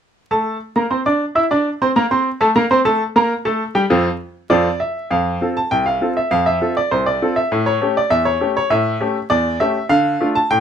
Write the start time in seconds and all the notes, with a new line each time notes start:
0.31 A3 A4 A5
0.76 A#3 A#4 A#5
0.90 C4 C5 C6
1.06 D4 D5 D6
1.35 E4 E5 E6
1.51 D4 D5 D6
1.82 C4 C5 C6
1.96 A#3 A#4 A#5
2.11 C4 C5 C6
2.41 A3 A4 A5
2.56 A#3 A#4 A#5
2.71 C4 C5 C6
2.85 A3 A4 A5
3.16 A#3 A#4 A#5
3.45 A3 A4 A5
3.75 G3 G4 G5
3.90 F2 C4 F4 A4
4.50 F2 C4 F4 A4 D5
4.80 E5
5.11 F2 F5
5.41 C4 F4 A4
5.57 A5
5.71 C2 G5
5.86 F5
6.01 C4 F4 A4
6.17 E5
6.31 F2 F5
6.46 E5
6.61 C4 F4 A4
6.77 D5
6.91 C2 C5
7.06 D5
7.22 C4 F4 A4
7.36 E5
7.52 A2
7.66 C#5
7.81 A3 C#4 G4
7.97 D5
8.10 E2 E5
8.25 C#5
8.41 A3 C#4 G4
8.57 C#5
8.70 A2 E5
9.01 A3 C#4 G4
9.30 E2 D5
9.60 A3 C#4 G4 E5
9.89 D3 F5
10.21 A3 D4 F4
10.35 A5
10.50 A2 G5